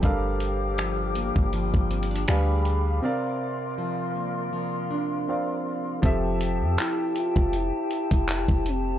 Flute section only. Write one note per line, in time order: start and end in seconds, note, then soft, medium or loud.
0.00 2.26 G4 medium
0.00 2.00 C5 medium
0.00 3.00 G5 medium
0.00 2.26 D6 medium
2.28 3.02 G#4 medium
2.28 5.99 F5 medium
2.28 3.02 B5 medium
3.03 6.00 A#4 medium
3.03 5.76 D5 medium
3.03 6.00 C6 medium
6.03 8.99 G4 medium
6.03 8.99 E5 medium
6.03 8.99 G5 medium
6.03 8.99 A5 medium